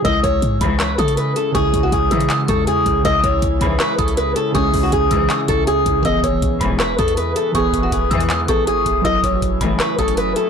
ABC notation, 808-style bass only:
X:1
M:4/4
L:1/8
Q:1/4=160
K:C#m
V:1 name="808-style bass" clef=bass
C,, C,, G,, C,,2 C,2 z | C,, C,, C,, C,2 E,,2 C,, | C,, C,, C,, C,, z C,,2 z | C,, C,, C,, C,, z C,,2 C,, |
E,,, E,,, B,,, E,,,2 E,,2 z | E,,, E,,, E,,, E,,2 G,,,2 E,,, | F,,, F,,, F,,, F,,, z F,,,2 z |]